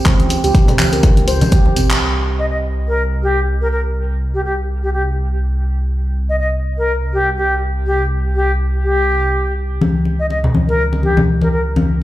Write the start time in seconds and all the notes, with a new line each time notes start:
0.05 C#2 C4, kick, clap, closed hi-hat, muted conga, high conga
0.20 closed hi-hat
0.29 open hi-hat, tambourine, muted conga
0.44 C#2 G4, closed hi-hat, tambourine
0.54 kick, closed hi-hat, tambourine, muted conga
0.68 C4, closed hi-hat, low conga
0.79 C#2, clap, open hi-hat, tambourine, high conga
0.92 A#4, closed hi-hat, tambourine, muted conga
1.03 kick, closed hi-hat, tambourine, low conga
1.17 C#2, closed hi-hat, muted conga
1.28 C5, open hi-hat, tambourine
1.41 closed hi-hat, tambourine, muted conga, high conga, low conga
1.52 C#2 G4, kick, closed hi-hat, tambourine
1.65 muted conga
1.76 G#1 C4, open hi-hat, tambourine, high conga, low conga
1.90 clap, closed hi-hat, tambourine
2.01 C2
2.39 D#5
2.50 D#5
2.88 A#4
3.23 G4
3.61 A#4
3.72 A#4
4.34 G4
4.45 G4
4.83 G4
4.93 G4
6.29 D#5
6.40 D#5
6.78 A#4
7.13 G4
7.37 G4
7.86 G4
8.35 G4
8.84 G4
9.81 C#2, muted conga, high conga
10.05 muted conga
10.20 D#5
10.30 D#5, muted conga
10.44 low conga
10.55 high conga
10.68 A#4, muted conga
10.93 muted conga
11.03 G4, high conga
11.17 muted conga, high conga, low conga
11.41 A#4, muted conga, high conga
11.52 A#4
11.76 muted conga, high conga